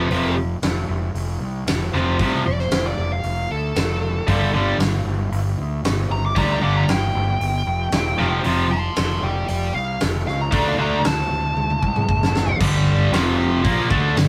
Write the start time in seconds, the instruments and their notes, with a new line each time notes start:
Already playing: lead electric guitar B4
0.11 fingered electric bass F1, distorted electric guitar F2 C3 F3, open hi-hat
0.62 fingered electric bass F1, snare, open hi-hat
0.88 fingered electric bass F1
1.14 fingered electric bass F1, open hi-hat
1.41 fingered electric bass C2
1.67 fingered electric bass F1, snare, open hi-hat
1.93 fingered electric bass F1, distorted electric guitar F2 C3 F3, snare
2.19 fingered electric bass C2, distorted electric guitar F2 C3 F3, kick, open hi-hat
2.46 fingered electric bass F1, lead electric guitar D5
2.59 lead electric guitar C5, snare
2.71 fingered electric bass F1, snare, open hi-hat
2.87 lead electric guitar D5
2.97 fingered electric bass F1
3.12 lead electric guitar F5
3.23 fingered electric bass F1, open hi-hat
3.50 fingered electric bass D2, lead electric guitar A4
3.76 fingered electric bass F1, snare, open hi-hat
4.27 fingered electric bass G1, distorted electric guitar G2 D3 G3, kick, open hi-hat
4.53 distorted electric guitar G2 D3 G3
4.79 fingered electric bass G1, snare, open hi-hat
5.05 fingered electric bass G1
5.32 fingered electric bass G1, open hi-hat
5.58 fingered electric bass D2
5.83 fingered electric bass G1, snare, open hi-hat
6.10 fingered electric bass G1, lead electric guitar A#5
6.26 lead electric guitar D6
6.36 fingered electric bass D2, distorted electric guitar G2 D3 G3, lead electric guitar A#5, kick, open hi-hat
6.51 lead electric guitar A#5
6.61 fingered electric bass G1, distorted electric guitar G2 D3 G3, lead electric guitar D6
6.77 lead electric guitar A#5
6.88 fingered electric bass G1, lead electric guitar G5, snare, open hi-hat
7.15 fingered electric bass G1
7.40 fingered electric bass G1, open hi-hat
7.66 fingered electric bass F1
7.92 fingered electric bass E1, snare, open hi-hat
8.18 fingered electric bass F1, distorted electric guitar F2 C3 F3, snare
8.44 fingered electric bass F1, distorted electric guitar F2 C3 F3, open hi-hat
8.71 lead electric guitar A5 C6
8.96 fingered electric bass F1, lead electric guitar A5 C6, snare, open hi-hat
9.22 fingered electric bass F1, lead electric guitar D5 G5
9.48 fingered electric bass F1, lead electric guitar D5 G5, open hi-hat
9.74 fingered electric bass C2, lead electric guitar F5
10.00 fingered electric bass F1, snare, open hi-hat
10.26 fingered electric bass C#2, lead electric guitar F5, snare
10.41 lead electric guitar A#5
10.52 fingered electric bass D2, distorted electric guitar D3 A3 D4, kick, open hi-hat
10.68 lead electric guitar F5
10.78 fingered electric bass D2, distorted electric guitar D3 A3 D4, lead electric guitar A#5
11.04 fingered electric bass D2, lead electric guitar A5, snare, open hi-hat
11.30 fingered electric bass D2
11.56 fingered electric bass D2, high tom
11.70 high tom
11.82 fingered electric bass C2, kick
11.96 mid tom
12.09 fingered electric bass F#1, kick
12.23 snare
12.35 snare
12.48 floor tom
12.60 fingered electric bass G1, distorted electric guitar G2 D3 G3, kick, crash
13.12 fingered electric bass F1, distorted electric guitar F2 C3 F3, snare, open hi-hat
13.63 fingered electric bass A#1, distorted electric guitar A#2 F3 A#3, kick, open hi-hat
13.90 fingered electric bass D2, distorted electric guitar D3 A3 D4, kick
14.15 fingered electric bass G1, distorted electric guitar G2 D3, snare, open hi-hat